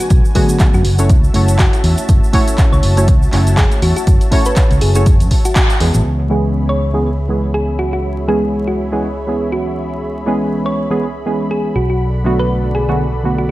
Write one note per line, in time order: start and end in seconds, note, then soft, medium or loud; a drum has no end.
0.00 0.32 D3 medium
0.00 0.32 F#3 medium
0.00 0.33 A3 medium
0.00 0.33 B3 medium
0.00 0.81 D4 medium
0.00 0.33 F#4 medium
0.00 0.81 F#4 medium
0.00 0.81 B4 medium
0.00 0.82 G#5 medium
0.00 shaker medium
0.10 0.20 B1 loud
0.10 kick loud
0.10 closed hi-hat medium
0.10 shaker medium
0.25 shaker soft
0.35 0.83 D3 medium
0.35 0.83 F#3 medium
0.35 0.84 A3 medium
0.35 0.84 B3 medium
0.35 0.84 F#4 loud
0.35 0.50 G#4 medium
0.35 kick medium
0.35 open hi-hat loud
0.49 closed hi-hat soft
0.49 shaker medium
0.60 kick loud
0.60 clap loud
0.60 closed hi-hat medium
0.60 shaker medium
0.74 0.81 F#2 loud
0.74 0.86 F#4 medium
0.74 shaker soft
0.85 1.11 F#1 loud
0.85 6.01 F#4 medium
0.85 6.01 C#5 medium
0.85 6.02 E5 medium
0.85 6.02 A5 medium
0.85 open hi-hat medium
0.99 1.14 A3 medium
0.99 1.14 C#4 medium
0.99 1.14 E4 medium
0.99 1.15 F#4 medium
0.99 1.15 C#5 medium
0.99 closed hi-hat medium
0.99 shaker medium
1.09 1.27 C#2 medium
1.09 kick loud
1.09 closed hi-hat medium
1.09 shaker medium
1.24 shaker soft
1.34 1.65 F#1 medium
1.34 2.31 A3 medium
1.34 2.31 C#4 medium
1.34 2.31 E4 medium
1.34 2.31 F#4 medium
1.34 2.32 C#5 medium
1.34 open hi-hat loud
1.48 closed hi-hat medium
1.48 shaker medium
1.59 2.29 F#4 medium
1.59 kick loud
1.59 clap loud
1.59 closed hi-hat medium
1.59 shaker medium
1.73 closed hi-hat soft
1.73 shaker soft
1.84 1.93 E2 loud
1.84 open hi-hat medium
1.98 closed hi-hat medium
1.98 shaker medium
2.09 2.18 F#1 loud
2.09 kick loud
2.09 closed hi-hat medium
2.09 shaker medium
2.24 shaker soft
2.33 2.93 A3 medium
2.33 2.94 C#4 medium
2.33 2.94 E4 medium
2.33 2.94 F#4 medium
2.33 2.94 C#5 loud
2.33 kick medium
2.33 open hi-hat loud
2.48 closed hi-hat soft
2.48 shaker medium
2.58 kick loud
2.58 clap loud
2.58 closed hi-hat medium
2.58 shaker medium
2.73 2.79 C#2 loud
2.73 3.41 C#5 medium
2.73 shaker soft
2.83 3.09 F#1 loud
2.83 open hi-hat medium
2.97 3.13 A3 medium
2.97 3.13 C#4 medium
2.97 3.13 E4 medium
2.97 3.13 F#4 medium
2.97 3.13 C#5 medium
2.97 closed hi-hat soft
2.97 shaker medium
3.08 3.25 C#2 medium
3.08 kick loud
3.08 closed hi-hat medium
3.08 shaker medium
3.22 shaker soft
3.32 3.64 F#1 medium
3.32 4.29 A3 medium
3.32 4.29 C#4 medium
3.32 4.29 E4 medium
3.32 4.30 F#4 medium
3.32 4.30 C#5 medium
3.32 clap medium
3.32 open hi-hat medium
3.47 closed hi-hat soft
3.47 shaker medium
3.57 3.72 G#4 loud
3.57 kick loud
3.57 clap loud
3.57 closed hi-hat medium
3.57 shaker medium
3.72 closed hi-hat soft
3.72 shaker soft
3.82 3.91 E2 loud
3.82 3.91 F#4 medium
3.82 open hi-hat medium
3.96 4.03 F#4 medium
3.96 closed hi-hat medium
3.96 shaker medium
4.07 4.16 F#1 loud
4.07 kick loud
4.07 closed hi-hat medium
4.07 shaker medium
4.21 closed hi-hat soft
4.21 shaker soft
4.31 4.92 A3 medium
4.31 4.92 C#4 medium
4.31 4.92 E4 medium
4.31 4.92 F#4 medium
4.31 4.93 C#5 loud
4.31 kick medium
4.31 open hi-hat loud
4.45 4.57 B4 medium
4.45 closed hi-hat medium
4.45 shaker medium
4.56 kick loud
4.56 clap loud
4.56 closed hi-hat medium
4.56 shaker medium
4.71 4.78 C#2 loud
4.71 closed hi-hat soft
4.71 shaker soft
4.81 5.22 F#1 medium
4.81 4.91 G#4 medium
4.81 open hi-hat medium
4.95 5.11 A3 medium
4.95 5.11 C#4 medium
4.95 5.11 E4 medium
4.95 5.11 F#4 medium
4.95 5.02 G#4 medium
4.95 5.11 C#5 medium
4.95 closed hi-hat medium
4.95 shaker medium
5.06 kick loud
5.06 closed hi-hat medium
5.06 shaker medium
5.20 5.27 F#2 medium
5.20 closed hi-hat soft
5.20 shaker soft
5.31 kick medium
5.31 open hi-hat loud
5.45 5.52 F#4 medium
5.45 closed hi-hat medium
5.45 shaker medium
5.56 5.65 F#4 medium
5.56 kick loud
5.56 clap loud
5.56 closed hi-hat medium
5.56 shaker medium
5.70 closed hi-hat soft
5.70 shaker soft
5.80 5.90 E2 medium
5.80 6.27 E3 medium
5.80 6.28 G#3 medium
5.80 6.28 B3 medium
5.80 6.28 C#4 medium
5.80 6.28 G#4 medium
5.80 open hi-hat medium
5.94 6.02 A1 medium
5.94 closed hi-hat medium
5.94 shaker medium
6.05 11.73 C#2 medium
6.05 11.72 G#4 medium
6.05 11.72 C#5 medium
6.05 11.72 E5 medium
6.05 13.51 B5 medium
6.29 6.90 E3 medium
6.29 6.90 G#3 medium
6.29 6.91 B3 medium
6.29 6.91 C#4 medium
6.29 6.91 G#4 medium
6.69 7.38 C#5 medium
6.93 7.09 E3 medium
6.93 7.09 G#3 medium
6.93 7.09 B3 medium
6.93 7.09 C#4 medium
6.93 7.10 G#4 medium
7.28 8.26 E3 medium
7.28 8.26 G#3 medium
7.28 8.26 B3 medium
7.28 8.26 C#4 medium
7.28 8.26 G#4 medium
7.54 7.69 G#4 medium
7.79 7.88 F#4 medium
7.93 8.00 F#4 medium
8.28 8.88 E3 medium
8.28 8.89 G#3 medium
8.28 8.89 B3 medium
8.28 8.89 C#4 medium
8.28 8.43 G#4 medium
8.28 8.89 G#4 medium
8.68 8.79 F#4 medium
8.92 9.07 E3 medium
8.92 9.08 G#3 medium
8.92 9.08 B3 medium
8.92 9.08 C#4 medium
8.92 9.08 G#4 medium
9.27 10.24 E3 medium
9.27 10.24 G#3 medium
9.27 10.24 B3 medium
9.27 10.25 C#4 medium
9.27 10.25 G#4 medium
9.52 10.23 F#4 medium
10.26 10.87 E3 medium
10.26 10.87 G#3 medium
10.26 10.87 B3 medium
10.26 10.88 C#4 medium
10.26 10.88 G#4 medium
10.66 11.35 C#5 medium
10.90 11.06 E3 medium
10.90 11.06 G#3 medium
10.90 11.06 B3 medium
10.90 11.06 C#4 medium
10.90 11.06 G#4 medium
11.26 11.74 E3 medium
11.26 11.74 G#3 medium
11.26 11.74 B3 medium
11.26 11.75 C#4 medium
11.26 11.75 G#4 medium
11.51 11.66 G#4 medium
11.76 13.51 B1 medium
11.76 11.85 F#4 medium
11.76 13.51 A4 medium
11.76 13.51 D5 medium
11.76 13.51 F#5 medium
11.90 11.97 F#4 medium
12.24 12.85 D3 medium
12.24 12.85 F#3 medium
12.24 12.86 A3 medium
12.24 12.86 B3 medium
12.24 12.86 F#4 medium
12.39 12.51 B4 medium
12.75 12.84 G#4 medium
12.88 13.04 D3 medium
12.88 13.04 F#3 medium
12.88 13.04 A3 medium
12.88 13.04 B3 medium
12.88 13.05 F#4 medium
12.88 12.96 G#4 medium
13.24 13.51 D3 medium
13.24 13.51 F#3 medium
13.24 13.51 A3 medium
13.24 13.51 B3 medium
13.24 13.51 F#4 medium
13.38 13.45 F#4 medium